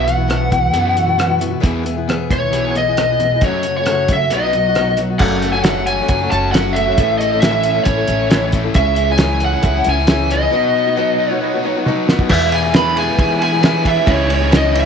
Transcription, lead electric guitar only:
0.04 1.35 F#5 medium
2.33 2.77 C#5 medium
2.78 3.44 D#5 medium
3.45 3.76 C#5 medium
3.77 4.10 C#5 medium
4.13 4.33 E5 medium
4.34 4.95 D#5 medium
5.19 5.52 F#5 loud
5.53 5.63 G#5 medium
5.63 5.86 F#5 medium
5.87 6.30 G#5 loud
6.31 6.52 A5 loud
6.52 6.76 F#5 medium
6.73 7.15 E5 medium
7.18 7.40 D#5 medium
7.41 7.50 E5 medium
7.51 7.84 E5 medium
7.84 8.48 C#5 medium
8.76 9.10 E5 loud
9.12 9.44 G#5 medium
9.45 9.89 F#5 loud
9.89 10.33 G#5 loud
10.32 11.32 D#5 medium
11.32 11.82 C#5 medium
12.31 12.53 E5 loud
12.55 12.76 G#5 medium
12.76 12.98 B5 loud
12.98 13.42 G#5 loud
13.44 13.88 G#5 loud
13.87 14.09 E5 medium
14.11 14.32 C#5 loud
14.35 14.55 C#5 medium
14.57 14.75 D#5 medium
14.80 14.85 E5 loud

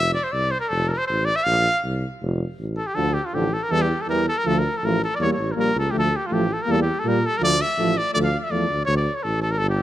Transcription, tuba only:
0.00 0.15 F1 medium
0.33 0.54 C2 medium
0.71 0.91 F1 medium
1.10 1.30 A1 medium
1.46 1.67 A#1 loud
1.84 2.05 C2 medium
2.22 2.42 F1 loud
2.59 2.80 A1 medium
2.97 3.18 D2 medium
3.34 3.54 A1 medium
3.71 3.92 E2 medium
4.08 4.28 E2 medium
4.46 4.66 D2 medium
4.83 5.03 A1 medium
5.20 5.30 E2 medium
5.38 5.55 A1 medium
5.57 5.73 A#1 medium
5.75 5.92 C#2 medium
5.93 6.14 D2 medium
6.31 6.51 A1 medium
6.68 6.88 E2 loud
7.05 7.25 A#2 medium
7.41 7.61 D2 medium
7.78 7.98 A1 medium
8.16 8.35 D2 medium
8.52 8.68 E2 medium
8.70 8.86 D2 medium
8.88 9.08 D2 loud
9.24 9.62 A1 medium
9.61 9.81 G1 loud

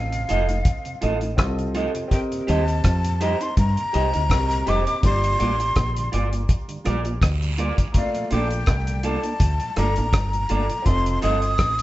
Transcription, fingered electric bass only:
0.00 0.25 A1 medium
0.31 0.62 F1 medium
1.04 1.39 A1 medium
1.39 1.88 C2 loud
2.49 2.80 D#2 loud
2.85 3.34 F2 loud
3.58 3.75 G2 loud
3.95 4.12 C2 medium
4.16 4.29 D2 medium
4.31 4.62 C2 loud
4.68 4.85 F1 medium
5.04 5.35 G1 loud
5.41 5.72 A1 medium
5.77 6.08 A#1 loud
6.14 6.45 G1 medium
6.87 7.18 A#1 medium
7.22 7.71 D2 medium
8.32 8.63 A#1 loud
8.68 9.17 C2 loud
9.41 9.58 D2 loud
9.78 9.95 G1 medium
9.98 10.12 A1 medium
10.14 10.45 G1 medium
10.51 10.68 G1 medium
10.87 11.18 F1 loud
11.24 11.55 G1 medium
11.60 11.82 A1 loud

